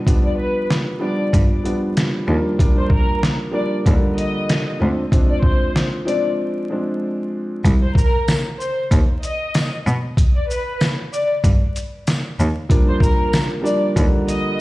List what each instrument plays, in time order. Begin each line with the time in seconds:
0.06 grand piano F3 G3 B3 D4, kick, closed hi-hat
0.25 violin section D5
0.38 violin section B4
0.71 snare, closed hi-hat
0.99 grand piano F3 G3 B3 D4, violin section D5
1.33 cello G2, kick, closed hi-hat
1.64 grand piano F3 G3 B3 D4, closed hi-hat
1.97 snare, closed hi-hat
2.27 cello D#2, grand piano F3 G3 A#3 D4
2.58 grand piano F3 G3 A#3 D4, kick, closed hi-hat
2.78 violin section C5
2.90 violin section A#4, kick
3.23 snare, closed hi-hat
3.51 grand piano F3 G3 A#3 D4, violin section D5
3.85 cello D#2, grand piano D3 F3 G3 A#3, kick, closed hi-hat
4.17 violin section D#5, closed hi-hat
4.49 snare, closed hi-hat
4.79 cello D2, grand piano F3 G#3 C4 D4
5.11 grand piano F3 G#3 C4 D4, kick, closed hi-hat
5.30 violin section D5
5.43 violin section C5, kick
5.76 snare, closed hi-hat
6.05 grand piano F3 G#3 C4 D4, violin section D5, closed hi-hat
6.70 grand piano F3 G#3 C4 D4
7.65 cello C2, kick, closed hi-hat
7.82 violin section C5
7.95 violin section A#4, kick, shaker
8.28 snare, closed hi-hat, tambourine
8.59 violin section C5, shaker
8.91 cello D#2, kick, closed hi-hat
9.23 violin section D#5, closed hi-hat, shaker
9.54 snare, closed hi-hat, tambourine
9.86 cello B2, shaker
10.17 kick, closed hi-hat
10.36 violin section D5
10.49 violin section B4, shaker
10.81 snare, closed hi-hat, tambourine
11.12 violin section D5, shaker
11.44 cello G2, kick, closed hi-hat
11.76 closed hi-hat, shaker
12.07 snare, closed hi-hat, tambourine
12.39 cello D#2, shaker
12.69 grand piano F3 G3 A#3 D4, kick, closed hi-hat
12.88 violin section C5
13.00 violin section A#4, kick, shaker
13.33 snare, closed hi-hat, tambourine
13.62 grand piano F3 G3 A#3 D4, violin section D5
13.66 shaker
13.95 cello D#2, grand piano D3 F3 G3 A#3, kick, closed hi-hat
14.28 violin section D#5, closed hi-hat, shaker